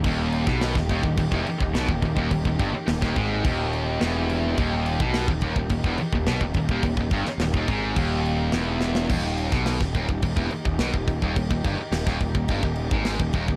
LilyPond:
<<
  \new Staff \with { instrumentName = "String section" } { \time 4/4 \tempo 4 = 106 <ees bes ees' g'>1~ | <ees bes ees' g'>1~ | <ees bes ees' g'>1~ | <ees bes ees' g'>1 |
<ees bes ees' g'>1~ | <ees bes ees' g'>1 | }
  \new Staff \with { instrumentName = "Distorted electric guitar" } { \clef bass \time 4/4 ees,8. ces8 ees,16 ees,16 ees,16 ees,16 fes,16 r16 ees,16 ces16 ees,16 ees,16 ees,16 | ees,16 ees,16 g,16 r16 ees,16 ees,16 aes,8 ees,4 fes,4 | ees,8. ces8 ees,16 ees,16 ees,16 ees,16 fes,16 r16 ees,16 ces16 ees,16 ees,16 ees,16 | ees,16 ees,16 g,16 r16 ees,16 ees,16 aes,8 ees,4 fes,4 |
ees,8. ces8 ees,16 ees,16 ees,16 ees,16 fes,16 r16 ees,16 ces16 ees,16 ees,16 ees,16 | ees,16 ees,16 g,16 r16 ees,16 ees,16 ees,16 ees,16 g,16 ees,8 aes,8 ees,16 ees,16 ees,16 | }
  \new Staff \with { instrumentName = "Distorted electric guitar" } { \clef bass \time 4/4 ees,8. ces8 ees,16 ees,16 ees,16 ees,16 fes,16 r16 ees,16 ces16 ees,16 ees,16 ees,16 | ees,16 ees,16 g,16 r16 ees,16 ees,16 aes,8 ees,4 fes,4 | ees,8. ces8 ees,16 ees,16 ees,16 ees,16 fes,16 r16 ees,16 ces16 ees,16 ees,16 ees,16 | ees,16 ees,16 g,16 r16 ees,16 ees,16 aes,8 ees,4 fes,4 |
r1 | r1 | }
  \new Staff \with { instrumentName = "Picked electric bass" } { \clef bass \time 4/4 ees,,8. ces,8 ees,,16 ees,,16 ees,,16 ees,,16 fes,,16 r16 ees,,16 ces,16 ees,,16 ees,,16 ees,,16 | ees,,16 ees,,16 g,,16 r16 ees,,16 ees,,16 aes,,8 ees,,4 fes,,4 | ees,,8. ces,8 ees,,16 ees,,16 ees,,16 ees,,16 fes,,16 r16 ees,,16 ces,16 ees,,16 ees,,16 ees,,16 | ees,,16 ees,,16 g,,16 r16 ees,,16 ees,,16 aes,,8 ees,,4 fes,,4 |
ees,,8. ces,8 ees,,16 ees,,16 ees,,16 ees,,16 fes,,16 r16 ees,,16 ces,16 ees,,16 ees,,16 ees,,16 | ees,,16 ees,,16 g,,16 r16 ees,,16 ees,,16 ees,,16 ees,,16 g,,16 ees,,8 aes,,8 ees,,16 ees,,16 ees,,16 | }
  \new DrumStaff \with { instrumentName = "Drums" } \drummode { \time 4/4 <cymc bd>8 cymc16 <bd sn>16 <cymc sn>16 <bd sn>16 <cymc bd>16 bd16 <cymc bd>16 bd16 cymc16 bd16 <cymc sn>16 bd16 <cymc bd>16 bd16 | <cymc bd>16 bd16 <cymc bd>8 <cymc sn>16 <bd sn>16 <cymc bd>8 <cymc bd>8 cymc8 <cymc sn>8 cymc8 | <cymc bd>8 cymc16 bd16 <cymc sn>16 bd16 <cymc bd>16 bd16 <cymc bd>16 bd16 cymc16 bd16 <cymc sn>16 bd16 <cymc bd>16 bd16 | <cymc bd>16 bd16 <cymc bd>16 sn16 <cymc sn>16 bd16 <cymc bd>8 <cymc bd>8 cymc8 <cymc sn>8 sn16 sn16 |
<cymc bd>8 cymc16 <bd sn>16 <cymc sn>16 <bd sn>16 <cymc bd>16 bd16 <cymc bd>16 bd16 cymc16 bd16 <cymc sn>16 bd16 <cymc bd>16 bd16 | <cymc bd>16 bd16 <cymc bd>8 <cymc sn>16 <bd sn>16 <cymc bd>16 bd16 <cymc bd>16 bd16 cymc16 bd16 <cymc sn>16 bd16 <cymc bd>16 bd16 | }
>>